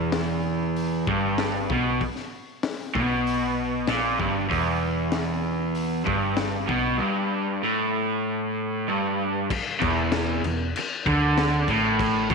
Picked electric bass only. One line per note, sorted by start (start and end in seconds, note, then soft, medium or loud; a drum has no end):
0.00 1.04 E1 medium
1.07 1.66 G1 medium
1.69 1.99 B1 medium
2.95 3.85 B1 medium
3.88 4.18 A#1 loud
4.20 4.49 G1 medium
4.51 6.04 E1 medium
6.06 6.66 G1 medium
6.70 6.99 B1 medium
9.51 muted picked electric bass stroke soft
9.82 10.40 E1 loud
10.44 10.73 E1 medium
10.76 muted picked electric bass stroke soft
11.06 11.64 D2 medium
11.68 12.26 A1 medium
12.30 12.35 B1 loud